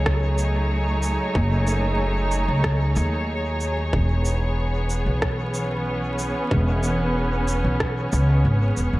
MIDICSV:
0, 0, Header, 1, 4, 480
1, 0, Start_track
1, 0, Tempo, 645161
1, 1005, Time_signature, 4, 2, 24, 8
1, 6695, End_track
2, 0, Start_track
2, 0, Title_t, "String section"
2, 0, Program_c, 0, 48
2, 0, Note_on_c, 0, 54, 64
2, 0, Note_on_c, 0, 57, 82
2, 0, Note_on_c, 0, 59, 81
2, 0, Note_on_c, 0, 63, 83
2, 0, Note_on_c, 0, 68, 71
2, 0, Note_on_c, 0, 73, 84
2, 394, Note_off_c, 0, 59, 0
2, 2925, Note_off_c, 0, 54, 0
2, 2926, Note_off_c, 0, 57, 0
2, 2926, Note_on_c, 0, 52, 83
2, 3099, Note_on_c, 0, 59, 96
2, 3584, Note_off_c, 0, 63, 0
2, 3996, Note_on_c, 0, 61, 82
2, 6695, Note_off_c, 0, 52, 0
2, 6695, Note_off_c, 0, 59, 0
2, 6695, Note_off_c, 0, 61, 0
2, 6695, Note_off_c, 0, 68, 0
2, 6695, Note_off_c, 0, 73, 0
2, 6695, End_track
3, 0, Start_track
3, 0, Title_t, "Upright bass"
3, 0, Program_c, 1, 32
3, 0, Note_on_c, 1, 37, 76
3, 864, Note_off_c, 1, 37, 0
3, 1006, Note_on_c, 1, 30, 97
3, 1824, Note_off_c, 1, 30, 0
3, 1847, Note_on_c, 1, 37, 83
3, 2201, Note_off_c, 1, 37, 0
3, 2205, Note_on_c, 1, 39, 109
3, 2903, Note_off_c, 1, 39, 0
3, 2925, Note_on_c, 1, 28, 102
3, 3744, Note_off_c, 1, 28, 0
3, 3766, Note_on_c, 1, 35, 79
3, 4703, Note_off_c, 1, 35, 0
3, 4846, Note_on_c, 1, 28, 101
3, 5664, Note_off_c, 1, 28, 0
3, 5687, Note_on_c, 1, 35, 81
3, 6042, Note_off_c, 1, 35, 0
3, 6046, Note_on_c, 1, 37, 102
3, 6281, Note_off_c, 1, 37, 0
3, 6286, Note_on_c, 1, 32, 87
3, 6497, Note_off_c, 1, 32, 0
3, 6526, Note_on_c, 1, 28, 79
3, 6633, Note_off_c, 1, 28, 0
3, 6646, Note_on_c, 1, 28, 88
3, 6695, Note_off_c, 1, 28, 0
3, 6695, End_track
4, 0, Start_track
4, 0, Title_t, "Drums"
4, 45, Note_on_c, 9, 37, 98
4, 46, Note_on_c, 9, 36, 104
4, 119, Note_off_c, 9, 37, 0
4, 120, Note_off_c, 9, 36, 0
4, 285, Note_on_c, 9, 82, 54
4, 359, Note_off_c, 9, 82, 0
4, 765, Note_on_c, 9, 82, 57
4, 839, Note_off_c, 9, 82, 0
4, 1005, Note_on_c, 9, 36, 107
4, 1080, Note_off_c, 9, 36, 0
4, 1245, Note_on_c, 9, 82, 51
4, 1319, Note_off_c, 9, 82, 0
4, 1724, Note_on_c, 9, 82, 58
4, 1798, Note_off_c, 9, 82, 0
4, 1963, Note_on_c, 9, 37, 98
4, 1965, Note_on_c, 9, 36, 105
4, 2038, Note_off_c, 9, 37, 0
4, 2039, Note_off_c, 9, 36, 0
4, 2204, Note_on_c, 9, 82, 54
4, 2278, Note_off_c, 9, 82, 0
4, 2684, Note_on_c, 9, 82, 54
4, 2759, Note_off_c, 9, 82, 0
4, 2925, Note_on_c, 9, 36, 115
4, 2999, Note_off_c, 9, 36, 0
4, 3164, Note_on_c, 9, 82, 55
4, 3239, Note_off_c, 9, 82, 0
4, 3645, Note_on_c, 9, 82, 54
4, 3720, Note_off_c, 9, 82, 0
4, 3884, Note_on_c, 9, 37, 93
4, 3885, Note_on_c, 9, 36, 111
4, 3959, Note_off_c, 9, 36, 0
4, 3959, Note_off_c, 9, 37, 0
4, 4125, Note_on_c, 9, 82, 55
4, 4199, Note_off_c, 9, 82, 0
4, 4604, Note_on_c, 9, 82, 53
4, 4679, Note_off_c, 9, 82, 0
4, 4845, Note_on_c, 9, 36, 115
4, 4919, Note_off_c, 9, 36, 0
4, 5085, Note_on_c, 9, 82, 50
4, 5160, Note_off_c, 9, 82, 0
4, 5565, Note_on_c, 9, 82, 51
4, 5639, Note_off_c, 9, 82, 0
4, 5805, Note_on_c, 9, 36, 107
4, 5805, Note_on_c, 9, 37, 99
4, 5879, Note_off_c, 9, 36, 0
4, 5879, Note_off_c, 9, 37, 0
4, 6045, Note_on_c, 9, 82, 51
4, 6119, Note_off_c, 9, 82, 0
4, 6526, Note_on_c, 9, 82, 50
4, 6600, Note_off_c, 9, 82, 0
4, 6695, End_track
0, 0, End_of_file